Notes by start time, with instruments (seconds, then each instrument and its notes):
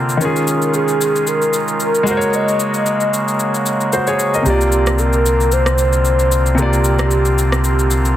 Already playing: grand piano C3 A#3 E4 F4 D5, pipe organ D3 A#3 C4 F4
0.09 shaker
0.17 grand piano D#3 C#4, pipe organ G#3 C#4, soft synth lead A#4, shaker
0.21 pipe organ D#3, grand piano F4 G#4
0.36 shaker
0.47 shaker
0.62 shaker
0.74 soft synth lead G#4, shaker
0.88 shaker
1.01 shaker
1.16 shaker
1.27 soft synth lead A#4, shaker
1.42 shaker
1.53 shaker
1.68 shaker
1.80 shaker
1.95 shaker
2.03 pipe organ C#3 G#3 A#3 F#4, grand piano G#3 F#4, shaker
2.08 grand piano A#4 C5
2.17 grand piano C#5
2.21 shaker
2.33 soft synth lead D#5, shaker
2.48 shaker
2.60 shaker
2.74 shaker
2.86 shaker
3.00 shaker
3.14 shaker
3.28 shaker
3.40 shaker
3.54 shaker
3.66 shaker
3.81 shaker
3.93 grand piano F#4 C5, shaker
4.07 grand piano G#4 C#5, shaker
4.19 shaker
4.34 grand piano A#4 D#5, shaker
4.42 sub bass C2, grand piano C3 A#3, pipe organ D3 C4 F4, soft synth lead G4, shaker
4.47 grand piano F4 D5
4.61 shaker
4.72 shaker
4.87 cross-stick, shaker
4.99 soft synth lead A#4, shaker
5.13 shaker
5.26 shaker
5.40 shaker
5.52 soft synth lead C5, shaker
5.66 cross-stick, shaker
5.78 soft synth lead C5, shaker
5.93 shaker
6.05 shaker
6.19 shaker
6.32 shaker
6.46 shaker
6.55 grand piano C3 A#3, soft synth lead G4, shaker
6.60 grand piano F4 D5
6.73 shaker
6.84 shaker
6.99 cross-stick, shaker
7.11 shaker
7.25 shaker
7.38 shaker
7.52 cross-stick, shaker
7.64 shaker
7.79 shaker
7.91 shaker
8.05 shaker